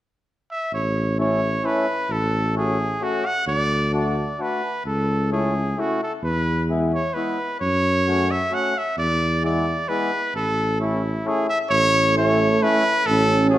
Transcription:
0.51 trumpet E5
0.72 tuba A1, trumpet C#5
1.18 accordion A3 C#4 E4, trumpet C#5
1.63 accordion A3 C#4 E4, trumpet B4
2.09 tuba A1, trumpet A4
2.55 accordion A3 C#4 F#4, trumpet G#4
3.01 accordion A3 C#4 F#4, trumpet F#4
3.26 trumpet F#5
3.47 tuba D2, trumpet D5
3.93 accordion A3 D4 F#4, trumpet D5
4.38 accordion A3 D4 F#4, trumpet B4
4.85 tuba C#2, trumpet A4
5.30 accordion A3 C#4 E4, trumpet G#4
5.77 accordion A3 C#4 E4, trumpet F#4
6.03 trumpet A4
6.23 tuba E2, trumpet B4
6.69 accordion G#3 B3 E4
6.94 trumpet C#5
7.14 accordion G#3 B3 E4, trumpet B4
7.60 tuba F#2, trumpet C#5
8.07 accordion A3 C#4 F#4
8.31 trumpet E5
8.51 accordion A3 C#4 F#4, trumpet F#5
8.78 trumpet E5
8.97 tuba E2, trumpet D5
9.43 accordion G#3 B3 E4, trumpet D5
9.89 accordion G#3 B3 E4, trumpet B4
10.34 tuba A1, trumpet A4
10.80 accordion A3 C#4 E4, trumpet E4
11.25 accordion A3 C#4 E4, trumpet G#4
11.49 trumpet E5
11.70 tuba A1, euphonium A3, trumpet C#5
12.16 accordion A3 C#4 E4, trumpet C#5
12.61 accordion A3 C#4 E4, trumpet B4
13.06 tuba A1, euphonium C#4, trumpet A4
13.50 accordion A3 C#4 F#4, trumpet G#4

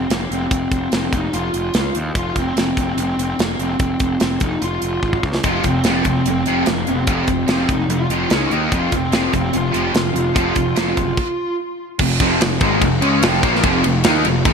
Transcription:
Already playing: lead electric guitar C4
0.10 picked electric bass F1, lead electric guitar A#3, snare, closed hi-hat
0.31 picked electric bass F1, lead electric guitar C4, closed hi-hat
0.51 picked electric bass F1, kick, closed hi-hat
0.71 picked electric bass F1, kick, closed hi-hat
0.92 picked electric bass F1, snare, closed hi-hat
1.13 picked electric bass F1, lead electric guitar D#4, kick, closed hi-hat
1.33 picked electric bass F1, lead electric guitar F4, closed hi-hat
1.54 picked electric bass F1, closed hi-hat
1.74 picked electric bass C#2, snare, closed hi-hat
1.95 picked electric bass D#2, closed hi-hat
2.15 picked electric bass F1, lead electric guitar F4, kick, closed hi-hat
2.36 picked electric bass F1, lead electric guitar C4, kick, closed hi-hat
2.56 picked electric bass F1, snare, closed hi-hat
2.77 picked electric bass F1, lead electric guitar C4, kick, closed hi-hat
2.97 picked electric bass F1, lead electric guitar C4, closed hi-hat
3.18 picked electric bass F1, lead electric guitar C4, closed hi-hat
3.39 picked electric bass F1, lead electric guitar A#3, snare, closed hi-hat
3.59 picked electric bass F1, lead electric guitar C4, closed hi-hat
3.79 picked electric bass F1, kick, closed hi-hat
4.00 picked electric bass F1, kick, closed hi-hat
4.20 picked electric bass F1, snare, closed hi-hat
4.40 picked electric bass F1, lead electric guitar D#4, kick, closed hi-hat
4.62 picked electric bass F1, lead electric guitar F4, closed hi-hat
4.82 picked electric bass F1, closed hi-hat
5.03 picked electric bass G#1, kick
5.13 kick
5.23 picked electric bass C#2, kick
5.35 snare
5.44 picked electric bass F1, overdriven electric guitar F2 C3 F3, lead electric guitar F4, kick, closed hi-hat
5.64 picked electric bass F1, overdriven electric guitar F2 C3, lead electric guitar C4, kick, closed hi-hat
5.84 picked electric bass F1, overdriven electric guitar F2 C3 F3, snare, closed hi-hat
6.05 picked electric bass F1, overdriven electric guitar F2 C3, lead electric guitar C4, kick, closed hi-hat
6.26 picked electric bass F1, overdriven electric guitar F2 C3, lead electric guitar C4, closed hi-hat
6.46 picked electric bass F1, overdriven electric guitar F2 C3 F3, closed hi-hat
6.66 picked electric bass F1, overdriven electric guitar F2 C3, lead electric guitar A#3, snare, closed hi-hat
6.87 picked electric bass F1, overdriven electric guitar F2 C3, lead electric guitar C4, closed hi-hat
7.07 picked electric bass F1, overdriven electric guitar F2 C3 F3, kick, closed hi-hat
7.27 picked electric bass F1, overdriven electric guitar F2 C3, kick, closed hi-hat
7.48 picked electric bass F1, overdriven electric guitar F2 C3 F3, lead electric guitar C4, snare, closed hi-hat
7.69 picked electric bass F1, overdriven electric guitar F2 C3, lead electric guitar D#4, kick, closed hi-hat
7.89 picked electric bass F1, overdriven electric guitar F2 C3, closed hi-hat
7.94 lead electric guitar F4
8.10 picked electric bass F1, overdriven electric guitar F2 C3 F3, closed hi-hat
8.30 picked electric bass C#2, overdriven electric guitar C#3 G#3 C#4, snare, closed hi-hat
8.37 lead electric guitar D#4
8.51 picked electric bass D#2, overdriven electric guitar D#3 A#3 D#4, closed hi-hat
8.71 picked electric bass F1, overdriven electric guitar F2 C3 F3, kick, closed hi-hat
8.76 lead electric guitar F4
8.92 picked electric bass F1, overdriven electric guitar F2 C3, kick, closed hi-hat
8.96 lead electric guitar C4
9.12 picked electric bass F1, overdriven electric guitar F2 C3 F3, snare, closed hi-hat
9.32 picked electric bass F1, overdriven electric guitar F2 C3, lead electric guitar C4, kick, closed hi-hat
9.53 picked electric bass F1, overdriven electric guitar F2 C3, lead electric guitar F4, closed hi-hat
9.72 picked electric bass F1, overdriven electric guitar F2 C3 F3, closed hi-hat
9.93 picked electric bass F1, overdriven electric guitar F2 C3, snare, closed hi-hat
10.13 picked electric bass F1, overdriven electric guitar F2 C3, closed hi-hat
10.34 picked electric bass F1, overdriven electric guitar F2 C3 F3, kick, closed hi-hat
10.55 picked electric bass F1, overdriven electric guitar F2 C3, kick, closed hi-hat
10.75 picked electric bass F1, overdriven electric guitar F2 C3 F3, snare, closed hi-hat
10.96 picked electric bass F#1, overdriven electric guitar F2 C3, kick, closed hi-hat
11.17 kick, crash
11.99 picked electric bass F1, overdriven electric guitar F2 C3, kick, crash
12.20 picked electric bass F1, overdriven electric guitar F2 C3 F3, kick, ride
12.40 picked electric bass F1, overdriven electric guitar F2 C3, snare, ride
12.61 picked electric bass G#1, overdriven electric guitar G#2 D#3 G#3, kick, ride
12.82 picked electric bass F1, overdriven electric guitar F2 C3, kick, ride
13.01 picked electric bass C#2, overdriven electric guitar C#3 G#3 C#4, ride
13.22 picked electric bass F1, overdriven electric guitar F2 C3 F3, snare, ride
13.43 picked electric bass A#1, overdriven electric guitar A#2 F3 A#3, kick, ride
13.55 snare
13.63 picked electric bass F1, overdriven electric guitar F2 C3 F3, kick, ride
13.84 picked electric bass F1, overdriven electric guitar F2 C3, ride
14.04 picked electric bass D#2, overdriven electric guitar D#3 A#3 D#4, snare, ride
14.25 picked electric bass F1, overdriven electric guitar F2 C3, ride
14.45 picked electric bass G#1, overdriven electric guitar G#2 D#3 G#3, kick, ride

